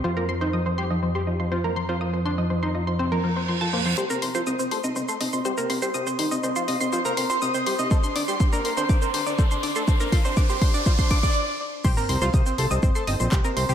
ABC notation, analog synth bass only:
X:1
M:4/4
L:1/16
Q:1/4=122
K:Cdor
V:1 name="Analog synth bass" clef=bass
F,,16- | F,,16 | C,, z C,, C,, C,, z C,, C,, G,,, z G,,, B,,, C,, z C,, C,, | C,, z C,, C,, C,, z C,, C,, G,,, z G,,, B,,, C,, z C,, C,, |
G,,, z G,,, G,,, G,,, z G,,, G,,, G,, z G,, F,,, G,,, z G,,, G,,, | G,,, z G,,, G,,, G,,, z G,,, G,,, G,, z G,, z4 z | C,, z C,, C,, C,, z C,, C,, G,,, z G,,, B,,, C,, z C,, C,, |]